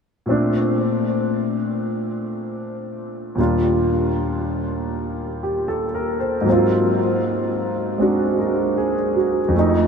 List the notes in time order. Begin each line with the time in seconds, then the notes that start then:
0.26 A#2 A3 C4
0.30 D4
3.35 D#2 A#2 G3 A#3
3.39 D4 F4
5.43 G4
5.68 A4
5.95 A#4
6.20 C5
6.41 G#2 F#3
6.47 A#3 C4
6.52 F4
7.98 G#3 C4 D4 F#4
8.39 A#4
8.78 G#4
9.16 F#4
9.48 F2 F3
9.56 A3 D#4